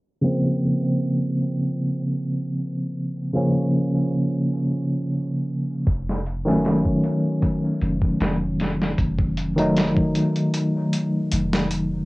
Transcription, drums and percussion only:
5.87 kick, closed hi-hat
6.09 snare
6.26 closed hi-hat
6.48 snare
6.65 snare, closed hi-hat
6.85 kick
7.04 closed hi-hat
7.42 kick, closed hi-hat
7.82 closed hi-hat
8.02 kick
8.21 snare, closed hi-hat
8.60 snare, closed hi-hat
8.82 snare
8.98 kick, closed hi-hat
9.19 kick
9.37 closed hi-hat
9.58 closed hi-hat
9.77 snare, closed hi-hat
9.97 kick
10.15 closed hi-hat
10.36 closed hi-hat
10.54 closed hi-hat
10.93 closed hi-hat
11.32 closed hi-hat
11.53 snare
11.71 closed hi-hat

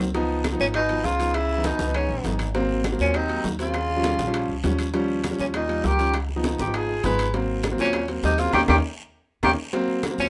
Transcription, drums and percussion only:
0.00 high conga, short guiro, claves
0.14 high bongo, high conga, high timbale, long guiro
0.29 high conga
0.44 high bongo, high conga, high timbale, short guiro, claves
0.60 short guiro
0.74 high bongo, high conga, high timbale, long guiro, claves
0.89 high conga, high timbale
1.04 high bongo, low bongo, high conga, short guiro
1.19 high conga, high timbale, short guiro
1.34 high bongo, high conga, high timbale, long guiro, claves
1.49 high bongo, high conga
1.64 high bongo, high conga, high timbale, short guiro
1.79 high conga, short guiro
1.94 high bongo, high conga, high timbale, claves
2.09 high bongo, high conga
2.24 high bongo, low bongo, high conga, high timbale, low timbale, short guiro
2.39 high bongo, high conga, high timbale, short guiro, claves
2.55 high bongo, high conga, high timbale, long guiro
2.69 high conga
2.84 high bongo, high conga, high timbale, short guiro, claves
2.99 short guiro
3.14 high bongo, high conga, high timbale, long guiro, claves
3.29 high conga, high timbale
3.44 high bongo, low bongo, high conga, low timbale, short guiro
3.59 high conga, high timbale, short guiro
3.74 high bongo, high conga, high timbale, long guiro, claves
3.89 high bongo, high conga
4.04 high bongo, high conga, high timbale, short guiro
4.19 high conga, short guiro
4.34 high bongo, high conga, high timbale, long guiro, claves
4.49 high bongo, high conga
4.64 high bongo, low bongo, high conga, high timbale, low timbale, short guiro
4.79 high bongo, high conga, high timbale, short guiro, claves
4.94 high bongo, high conga, high timbale, long guiro
5.09 high conga
5.24 high bongo, high conga, high timbale, short guiro, claves
5.39 short guiro
5.54 high bongo, high conga, high timbale, long guiro, claves
5.69 high conga, high timbale
5.84 high bongo, low bongo, high conga, low timbale, short guiro
5.99 high conga, high timbale, short guiro
6.14 high bongo, high conga, high timbale, long guiro, claves
6.28 high bongo, high conga
6.43 high bongo, high conga, high timbale, short guiro
6.59 high conga, short guiro
6.74 high bongo, high conga, high timbale, long guiro, claves
6.89 high bongo, high conga
7.04 high bongo, low bongo, high conga, high timbale, low timbale, short guiro
7.19 high bongo, high conga, high timbale, short guiro, claves
7.34 high bongo, high conga, high timbale, long guiro
7.49 high conga
7.63 high bongo, high conga, high timbale, short guiro, claves
7.78 short guiro
7.93 high bongo, high conga, high timbale, long guiro, claves
8.08 high conga, high timbale
8.23 high bongo, low bongo, high conga, low timbale, short guiro
8.38 high conga, high timbale, short guiro
8.53 low bongo, high conga, high timbale, long guiro, claves
8.68 low bongo, high conga, high timbale, long guiro, claves
9.43 low bongo, high conga, high timbale, long guiro, claves
9.73 high bongo, high conga, high timbale, long guiro
9.88 high conga
10.03 high bongo, high conga, high timbale, short guiro, claves
10.18 short guiro

